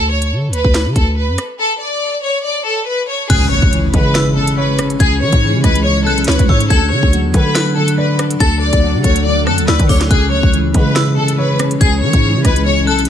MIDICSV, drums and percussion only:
0, 0, Header, 1, 2, 480
1, 0, Start_track
1, 0, Tempo, 425532
1, 1800, Time_signature, 4, 2, 24, 8
1, 14766, End_track
2, 0, Start_track
2, 0, Title_t, "Drums"
2, 246, Note_on_c, 9, 42, 70
2, 359, Note_off_c, 9, 42, 0
2, 600, Note_on_c, 9, 42, 85
2, 713, Note_off_c, 9, 42, 0
2, 728, Note_on_c, 9, 36, 100
2, 839, Note_on_c, 9, 38, 117
2, 840, Note_on_c, 9, 42, 69
2, 841, Note_off_c, 9, 36, 0
2, 952, Note_off_c, 9, 38, 0
2, 953, Note_off_c, 9, 42, 0
2, 1080, Note_on_c, 9, 42, 59
2, 1081, Note_on_c, 9, 36, 94
2, 1193, Note_off_c, 9, 36, 0
2, 1193, Note_off_c, 9, 42, 0
2, 1558, Note_on_c, 9, 42, 91
2, 1561, Note_on_c, 9, 37, 92
2, 1671, Note_off_c, 9, 42, 0
2, 1674, Note_off_c, 9, 37, 0
2, 3721, Note_on_c, 9, 36, 120
2, 3721, Note_on_c, 9, 42, 84
2, 3721, Note_on_c, 9, 49, 105
2, 3834, Note_off_c, 9, 36, 0
2, 3834, Note_off_c, 9, 42, 0
2, 3834, Note_off_c, 9, 49, 0
2, 4088, Note_on_c, 9, 36, 92
2, 4201, Note_off_c, 9, 36, 0
2, 4205, Note_on_c, 9, 42, 67
2, 4318, Note_off_c, 9, 42, 0
2, 4440, Note_on_c, 9, 42, 81
2, 4441, Note_on_c, 9, 36, 91
2, 4553, Note_off_c, 9, 42, 0
2, 4554, Note_off_c, 9, 36, 0
2, 4680, Note_on_c, 9, 38, 117
2, 4682, Note_on_c, 9, 42, 72
2, 4793, Note_off_c, 9, 38, 0
2, 4794, Note_off_c, 9, 42, 0
2, 5047, Note_on_c, 9, 42, 93
2, 5160, Note_off_c, 9, 42, 0
2, 5399, Note_on_c, 9, 42, 94
2, 5402, Note_on_c, 9, 37, 99
2, 5512, Note_off_c, 9, 42, 0
2, 5514, Note_off_c, 9, 37, 0
2, 5529, Note_on_c, 9, 42, 69
2, 5641, Note_off_c, 9, 42, 0
2, 5641, Note_on_c, 9, 36, 123
2, 5641, Note_on_c, 9, 42, 84
2, 5754, Note_off_c, 9, 36, 0
2, 5754, Note_off_c, 9, 42, 0
2, 6007, Note_on_c, 9, 42, 70
2, 6008, Note_on_c, 9, 36, 91
2, 6120, Note_off_c, 9, 42, 0
2, 6121, Note_off_c, 9, 36, 0
2, 6361, Note_on_c, 9, 36, 90
2, 6361, Note_on_c, 9, 37, 66
2, 6361, Note_on_c, 9, 42, 86
2, 6473, Note_off_c, 9, 42, 0
2, 6474, Note_off_c, 9, 36, 0
2, 6474, Note_off_c, 9, 37, 0
2, 6491, Note_on_c, 9, 42, 70
2, 6604, Note_off_c, 9, 42, 0
2, 6968, Note_on_c, 9, 42, 53
2, 7043, Note_off_c, 9, 42, 0
2, 7043, Note_on_c, 9, 42, 69
2, 7082, Note_on_c, 9, 38, 118
2, 7124, Note_off_c, 9, 42, 0
2, 7124, Note_on_c, 9, 42, 89
2, 7195, Note_off_c, 9, 38, 0
2, 7209, Note_on_c, 9, 36, 111
2, 7210, Note_off_c, 9, 42, 0
2, 7210, Note_on_c, 9, 42, 95
2, 7322, Note_off_c, 9, 36, 0
2, 7322, Note_on_c, 9, 36, 98
2, 7323, Note_off_c, 9, 42, 0
2, 7434, Note_off_c, 9, 36, 0
2, 7450, Note_on_c, 9, 42, 72
2, 7561, Note_on_c, 9, 36, 126
2, 7563, Note_off_c, 9, 42, 0
2, 7563, Note_on_c, 9, 42, 81
2, 7674, Note_off_c, 9, 36, 0
2, 7675, Note_off_c, 9, 42, 0
2, 7928, Note_on_c, 9, 36, 92
2, 8041, Note_off_c, 9, 36, 0
2, 8045, Note_on_c, 9, 42, 66
2, 8158, Note_off_c, 9, 42, 0
2, 8280, Note_on_c, 9, 42, 83
2, 8281, Note_on_c, 9, 36, 89
2, 8393, Note_off_c, 9, 42, 0
2, 8394, Note_off_c, 9, 36, 0
2, 8520, Note_on_c, 9, 38, 113
2, 8522, Note_on_c, 9, 42, 70
2, 8633, Note_off_c, 9, 38, 0
2, 8634, Note_off_c, 9, 42, 0
2, 8888, Note_on_c, 9, 42, 90
2, 9001, Note_off_c, 9, 42, 0
2, 9238, Note_on_c, 9, 42, 92
2, 9241, Note_on_c, 9, 37, 100
2, 9351, Note_off_c, 9, 42, 0
2, 9354, Note_off_c, 9, 37, 0
2, 9368, Note_on_c, 9, 42, 69
2, 9480, Note_off_c, 9, 42, 0
2, 9480, Note_on_c, 9, 36, 121
2, 9480, Note_on_c, 9, 42, 81
2, 9593, Note_off_c, 9, 36, 0
2, 9593, Note_off_c, 9, 42, 0
2, 9845, Note_on_c, 9, 42, 70
2, 9847, Note_on_c, 9, 36, 91
2, 9958, Note_off_c, 9, 42, 0
2, 9960, Note_off_c, 9, 36, 0
2, 10199, Note_on_c, 9, 42, 86
2, 10200, Note_on_c, 9, 36, 88
2, 10312, Note_off_c, 9, 42, 0
2, 10313, Note_off_c, 9, 36, 0
2, 10330, Note_on_c, 9, 42, 74
2, 10442, Note_off_c, 9, 42, 0
2, 10679, Note_on_c, 9, 37, 90
2, 10792, Note_off_c, 9, 37, 0
2, 10806, Note_on_c, 9, 42, 83
2, 10919, Note_off_c, 9, 42, 0
2, 10921, Note_on_c, 9, 38, 123
2, 11033, Note_off_c, 9, 38, 0
2, 11048, Note_on_c, 9, 36, 110
2, 11049, Note_on_c, 9, 42, 99
2, 11158, Note_on_c, 9, 46, 65
2, 11160, Note_off_c, 9, 36, 0
2, 11160, Note_on_c, 9, 36, 92
2, 11161, Note_off_c, 9, 42, 0
2, 11271, Note_off_c, 9, 46, 0
2, 11273, Note_off_c, 9, 36, 0
2, 11287, Note_on_c, 9, 38, 64
2, 11288, Note_on_c, 9, 42, 68
2, 11400, Note_off_c, 9, 38, 0
2, 11400, Note_off_c, 9, 42, 0
2, 11400, Note_on_c, 9, 36, 124
2, 11400, Note_on_c, 9, 42, 83
2, 11513, Note_off_c, 9, 36, 0
2, 11513, Note_off_c, 9, 42, 0
2, 11767, Note_on_c, 9, 36, 90
2, 11880, Note_off_c, 9, 36, 0
2, 11884, Note_on_c, 9, 42, 66
2, 11997, Note_off_c, 9, 42, 0
2, 12119, Note_on_c, 9, 42, 84
2, 12120, Note_on_c, 9, 36, 89
2, 12232, Note_off_c, 9, 42, 0
2, 12233, Note_off_c, 9, 36, 0
2, 12360, Note_on_c, 9, 38, 114
2, 12361, Note_on_c, 9, 42, 69
2, 12473, Note_off_c, 9, 38, 0
2, 12474, Note_off_c, 9, 42, 0
2, 12728, Note_on_c, 9, 42, 87
2, 12840, Note_off_c, 9, 42, 0
2, 13078, Note_on_c, 9, 42, 93
2, 13081, Note_on_c, 9, 37, 100
2, 13191, Note_off_c, 9, 42, 0
2, 13194, Note_off_c, 9, 37, 0
2, 13208, Note_on_c, 9, 42, 69
2, 13320, Note_on_c, 9, 36, 124
2, 13321, Note_off_c, 9, 42, 0
2, 13321, Note_on_c, 9, 42, 84
2, 13433, Note_off_c, 9, 36, 0
2, 13433, Note_off_c, 9, 42, 0
2, 13686, Note_on_c, 9, 42, 72
2, 13688, Note_on_c, 9, 36, 92
2, 13799, Note_off_c, 9, 42, 0
2, 13800, Note_off_c, 9, 36, 0
2, 14040, Note_on_c, 9, 37, 69
2, 14040, Note_on_c, 9, 42, 84
2, 14041, Note_on_c, 9, 36, 89
2, 14152, Note_off_c, 9, 42, 0
2, 14153, Note_off_c, 9, 36, 0
2, 14153, Note_off_c, 9, 37, 0
2, 14170, Note_on_c, 9, 42, 73
2, 14282, Note_off_c, 9, 42, 0
2, 14648, Note_on_c, 9, 42, 54
2, 14723, Note_off_c, 9, 42, 0
2, 14723, Note_on_c, 9, 42, 71
2, 14766, Note_off_c, 9, 42, 0
2, 14766, End_track
0, 0, End_of_file